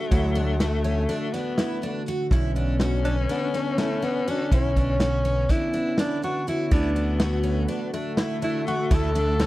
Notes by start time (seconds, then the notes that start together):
Already playing: D3 A3 F#4
0.10 D2 F#3 E4, kick, closed hi-hat
0.35 D4, closed hi-hat
0.60 A3 F#4, snare, closed hi-hat
0.84 C#4, closed hi-hat
1.09 D4, closed hi-hat
1.33 B3 D4, snare, closed hi-hat
1.58 E4, snare, closed hi-hat
1.82 D4, closed hi-hat
2.06 F#4, closed hi-hat
2.31 B1 D3 B3 C#4 E4, kick, closed hi-hat
2.55 D4, closed hi-hat
2.80 F#4, snare, closed hi-hat
3.05 C#4 D4, closed hi-hat
3.29 B3 D4, snare, closed hi-hat
3.54 C#4 D4, snare, closed hi-hat
3.78 A3 E4, snare, closed hi-hat
4.02 B3 D4, closed hi-hat
4.27 D4 F#4, closed hi-hat
4.51 B1 C#4 E4, kick, closed hi-hat
4.76 D4, kick, closed hi-hat
5.00 F#4, snare, closed hi-hat
5.25 C#4, closed hi-hat
5.49 D4 E4, kick, snare, closed hi-hat
5.73 D4, closed hi-hat
5.98 D4 E4, snare, closed hi-hat
6.22 D4 F#4, closed hi-hat
6.47 E4 F#4, closed hi-hat
6.70 D2 D3 A3 B3 D4 E4, kick, closed hi-hat
6.74 F#4
6.96 D4, closed hi-hat
7.20 F#4, snare, closed hi-hat
7.44 C#4, closed hi-hat
7.68 D4, closed hi-hat
7.94 A3 D4, closed hi-hat
8.17 E4, snare, closed hi-hat
8.42 D4 E4, closed hi-hat
8.67 F#4, closed hi-hat
8.91 D2 E4 A4, kick, closed hi-hat
9.15 D4, snare, closed hi-hat
9.39 C#4 F#4, snare, closed hi-hat